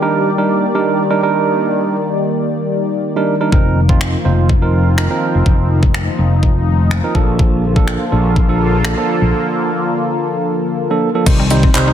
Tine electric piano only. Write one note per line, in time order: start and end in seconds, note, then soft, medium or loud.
0.02 0.29 G3 medium
0.02 0.29 D4 medium
0.02 0.29 D#4 medium
0.02 0.29 A#4 loud
0.38 0.65 G3 medium
0.38 0.65 D4 medium
0.38 0.65 D#4 medium
0.38 0.65 A#4 medium
0.75 1.02 G3 medium
0.75 1.02 D4 medium
0.75 1.02 D#4 medium
0.75 1.02 A#4 loud
1.10 1.20 G3 medium
1.10 1.20 D4 medium
1.10 1.20 D#4 medium
1.10 1.20 A#4 loud
1.23 1.95 G3 medium
1.23 1.95 D4 medium
1.23 1.95 D#4 medium
1.23 1.95 A#4 medium
3.16 3.34 G3 medium
3.16 3.34 D4 medium
3.16 3.34 D#4 medium
3.16 3.34 A#4 medium
3.40 3.49 G3 medium
3.40 3.49 D4 medium
3.40 3.49 D#4 medium
3.40 3.49 A#4 medium
3.52 3.79 F3 medium
3.52 3.79 C4 medium
3.52 3.79 D#4 medium
3.52 3.80 A#4 medium
3.89 4.16 F3 medium
3.89 4.16 C4 medium
3.89 4.16 D#4 medium
3.89 4.16 F4 loud
4.25 4.52 F3 medium
4.25 4.52 C4 medium
4.25 4.52 D#4 medium
4.25 4.52 C5 medium
4.62 4.89 F3 medium
4.62 4.89 C4 medium
4.62 4.89 D#4 medium
4.62 4.89 A#4 medium
4.97 5.07 F3 medium
4.97 5.07 C4 medium
4.97 5.07 D#4 medium
4.97 5.07 A#4 loud
5.10 5.82 F3 medium
5.10 5.82 C4 medium
5.10 5.82 D#4 medium
5.10 5.82 A#4 medium
7.04 7.14 F3 medium
7.04 7.15 C4 medium
7.04 7.15 D#4 medium
7.04 7.15 A#4 medium
7.15 7.64 F3 medium
7.15 7.64 A#3 medium
7.15 7.64 D4 medium
7.15 7.64 A4 loud
7.76 8.03 F3 medium
7.76 8.03 A#3 medium
7.76 8.03 D4 medium
7.76 8.03 A4 loud
8.12 8.39 F3 medium
8.12 8.39 A#3 medium
8.12 8.39 D4 medium
8.12 8.39 A4 medium
8.49 8.76 F3 medium
8.49 8.76 A#3 medium
8.49 8.76 D4 medium
8.49 8.76 A4 loud
8.84 8.94 F3 medium
8.84 8.94 A#3 medium
8.84 8.94 D4 medium
8.84 8.94 A4 loud
8.97 9.69 F3 medium
8.97 9.69 A#3 medium
8.97 9.69 D4 medium
8.97 9.70 A4 medium
10.90 11.08 F3 medium
10.90 11.08 A#3 medium
10.90 11.09 D4 medium
10.90 11.09 A4 medium
11.15 11.23 F3 medium
11.15 11.23 A#3 medium
11.15 11.24 D4 medium
11.15 11.24 A4 medium
11.26 11.45 G3 medium
11.26 11.45 C4 medium
11.26 11.45 D#4 medium
11.26 11.45 C5 medium
11.50 11.69 G3 medium
11.50 11.69 C4 medium
11.50 11.69 D#4 medium
11.50 11.69 C5 loud
11.74 11.93 G3 loud
11.74 11.93 C4 medium
11.74 11.93 D#4 medium
11.74 11.93 C5 loud